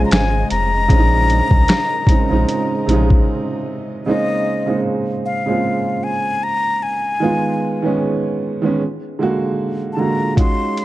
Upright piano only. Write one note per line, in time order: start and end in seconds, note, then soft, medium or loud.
0.00 2.86 C3 medium
0.00 0.88 C#3 medium
0.00 0.90 G#3 medium
0.00 0.91 C4 medium
0.00 0.99 D#4 medium
0.00 0.57 F4 medium
0.88 1.74 C#3 medium
0.88 1.74 G#3 medium
0.88 1.75 C4 medium
0.88 0.98 D4 medium
0.99 1.79 D#4 loud
2.07 2.24 C#3 medium
2.07 2.25 G#3 medium
2.07 2.25 C4 medium
2.07 2.26 D#4 medium
2.29 2.72 C#3 medium
2.29 2.72 G#3 medium
2.29 2.73 C4 medium
2.29 2.74 D#4 medium
2.86 2.94 C3 medium
2.86 3.72 G#3 medium
2.86 3.73 C4 medium
2.86 3.73 D#4 medium
2.93 3.75 C#3 medium
4.06 4.48 C#3 medium
4.06 4.49 G#3 medium
4.06 4.49 A#3 medium
4.06 4.50 C4 medium
4.06 4.50 D#4 medium
4.66 5.20 C#3 medium
4.66 5.21 G#3 medium
4.66 5.21 A#3 medium
4.66 5.22 C4 medium
4.66 5.22 D#4 medium
5.46 6.57 C#3 medium
5.46 6.58 G#3 medium
5.46 6.58 A#3 medium
5.46 6.59 C4 medium
5.46 6.59 F4 medium
7.20 7.63 D#3 medium
7.20 7.64 G#3 medium
7.20 7.64 B3 medium
7.20 7.65 F4 medium
7.82 8.36 D#3 medium
7.82 8.37 G#3 medium
7.82 8.38 B3 medium
7.82 8.38 C#4 medium
8.62 8.79 D#3 medium
8.62 8.80 G#3 medium
8.62 8.80 B3 medium
8.62 8.81 C#4 medium
9.19 9.77 D3 medium
9.19 9.78 G#3 medium
9.19 9.79 A#3 medium
9.19 9.79 F#4 medium
9.97 10.27 D3 medium
9.97 10.28 G#3 medium
9.97 10.28 A#3 medium
9.97 10.29 F#4 medium
10.36 10.80 G#3 medium
10.36 10.80 C#4 medium
10.36 10.81 D#4 medium
10.36 10.79 F4 medium
10.36 10.81 F#4 medium